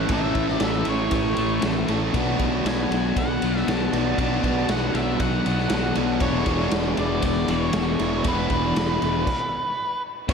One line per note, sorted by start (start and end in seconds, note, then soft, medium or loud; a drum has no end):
0.00 0.10 E3 medium
0.00 0.10 A3 medium
0.00 0.11 A3 medium
0.00 0.13 A3 medium
0.00 0.10 C#4 medium
0.00 0.11 E4 loud
0.00 0.12 A4 medium
0.00 0.13 F#5 loud
0.09 0.31 A1 medium
0.09 1.87 A2 medium
0.09 1.36 A2 medium
0.09 1.87 E3 medium
0.09 1.37 E3 medium
0.09 1.90 A3 loud
0.09 1.88 C#4 loud
0.09 2.14 E4 medium
0.09 1.89 A4 medium
0.09 kick loud
0.09 ride medium
0.13 1.37 A3 loud
0.13 0.63 E5 medium
0.35 0.57 A1 medium
0.35 kick medium
0.35 ride medium
0.48 snare soft
0.60 0.82 A1 medium
0.60 snare loud
0.60 ride medium
0.64 0.89 E5 medium
0.85 1.08 A1 medium
0.85 ride medium
0.89 1.14 C#5 medium
1.11 1.33 A1 medium
1.11 1.61 C#5 medium
1.11 kick medium
1.11 ride medium
1.37 1.59 A1 medium
1.37 1.62 A2 medium
1.37 1.63 E3 medium
1.37 1.65 A3 medium
1.37 ride medium
1.62 1.84 A1 medium
1.62 2.13 A2 medium
1.62 2.14 E3 medium
1.62 2.16 A3 medium
1.62 snare loud
1.62 ride medium
1.88 2.10 A1 medium
1.88 2.13 A2 medium
1.88 2.14 E3 medium
1.88 2.15 A3 medium
1.88 2.14 C#4 medium
1.88 2.16 A4 medium
1.88 ride medium
2.14 2.35 B1 medium
2.14 3.91 B2 medium
2.14 3.40 B2 medium
2.14 3.91 F#3 medium
2.14 3.41 F#3 medium
2.14 3.94 B3 medium
2.14 3.42 B3 loud
2.14 3.93 D4 loud
2.14 3.92 F#4 medium
2.14 kick loud
2.14 ride medium
2.39 2.61 B1 medium
2.39 kick medium
2.39 ride medium
2.65 2.86 B1 medium
2.65 3.18 G#5 medium
2.65 snare loud
2.65 ride medium
2.91 3.12 B1 medium
2.91 ride medium
3.16 3.37 B1 medium
3.16 3.69 F#5 medium
3.16 kick medium
3.16 ride medium
3.42 3.63 B1 medium
3.42 3.66 B2 medium
3.42 3.67 F#3 medium
3.42 3.69 B3 medium
3.42 ride medium
3.56 snare soft
3.67 3.88 B1 medium
3.67 4.16 B2 medium
3.67 4.17 F#3 medium
3.67 4.21 B3 medium
3.67 4.18 A5 loud
3.67 snare loud
3.67 ride medium
3.93 4.14 B1 medium
3.93 4.17 B2 medium
3.93 4.18 F#3 medium
3.93 4.19 B3 medium
3.93 4.20 D4 medium
3.93 4.17 F#4 medium
3.93 ride medium
4.18 4.39 B1 medium
4.18 5.95 B2 medium
4.18 5.45 B2 medium
4.18 5.95 F#3 loud
4.18 5.45 F#3 medium
4.18 5.97 B3 medium
4.18 5.45 B3 loud
4.18 5.96 D4 medium
4.18 5.95 F#4 loud
4.18 4.70 A5 medium
4.18 kick loud
4.18 ride medium
4.44 4.65 B1 medium
4.44 kick medium
4.44 ride medium
4.69 4.90 B1 medium
4.69 4.96 F#5 medium
4.69 snare loud
4.69 ride medium
4.94 5.15 B1 medium
4.94 5.20 E5 medium
4.94 ride medium
5.20 5.41 B1 medium
5.20 5.92 F#5 medium
5.20 kick medium
5.20 ride medium
5.46 5.67 B1 medium
5.46 5.70 B2 medium
5.46 5.70 F#3 medium
5.46 5.73 B3 medium
5.46 ride medium
5.58 snare soft
5.70 5.92 B1 medium
5.70 6.21 B2 medium
5.70 6.21 F#3 medium
5.70 snare loud
5.70 ride medium
5.74 9.24 B3 medium
5.95 6.18 B1 medium
5.95 6.21 B2 medium
5.95 6.21 F#3 medium
5.95 6.23 B3 medium
5.95 6.23 D4 medium
5.95 6.20 F#4 medium
5.95 ride medium
6.20 6.42 E1 medium
6.20 7.99 E2 medium
6.20 7.48 E2 medium
6.20 7.99 B2 medium
6.20 7.48 B2 medium
6.20 7.99 E3 loud
6.20 7.48 E3 medium
6.20 7.99 G#3 medium
6.20 8.24 B3 medium
6.20 7.98 D4 loud
6.20 7.98 E4 loud
6.20 6.69 C#5 loud
6.20 kick loud
6.20 ride medium
6.24 8.25 G#4 medium
6.46 6.68 E1 medium
6.46 kick medium
6.46 ride medium
6.60 snare soft
6.71 6.94 E1 medium
6.71 snare loud
6.71 ride medium
6.97 7.19 E1 medium
6.97 7.24 D5 medium
6.97 ride medium
7.22 7.45 E1 medium
7.22 7.50 D5 medium
7.22 kick medium
7.22 ride medium
7.48 7.70 E1 loud
7.48 7.74 E2 medium
7.48 7.74 B2 medium
7.48 7.73 E3 medium
7.48 8.22 C#5 medium
7.48 ride medium
7.73 7.95 E1 medium
7.73 8.24 E2 medium
7.73 8.25 B2 medium
7.73 snare loud
7.73 ride medium
7.78 8.26 E3 medium
7.99 8.21 E1 medium
7.99 8.24 E2 medium
7.99 8.24 B2 medium
7.99 8.24 E3 medium
7.99 8.24 G#3 medium
7.99 8.24 D4 medium
7.99 8.24 E4 medium
7.99 ride medium
8.24 8.46 E1 medium
8.24 9.26 E2 medium
8.24 9.26 B2 loud
8.24 9.27 B2 medium
8.24 9.26 E3 medium
8.24 9.27 E3 loud
8.24 9.26 G#3 medium
8.24 9.26 B3 medium
8.24 9.26 D4 medium
8.24 9.27 E4 medium
8.24 9.27 G#4 medium
8.24 10.01 B4 medium
8.24 kick loud
8.24 ride medium
8.50 8.72 E1 medium
8.50 kick medium
8.50 ride medium
8.76 8.98 E1 medium
8.76 snare loud
8.76 ride medium
9.02 9.23 E1 medium
9.02 ride medium
9.27 kick loud
9.27 crash medium
10.28 10.33 A1 loud
10.28 10.33 A2 medium
10.28 10.33 E3 medium
10.28 10.33 E3 loud
10.28 10.33 C#5 medium
10.28 kick loud
10.28 crash loud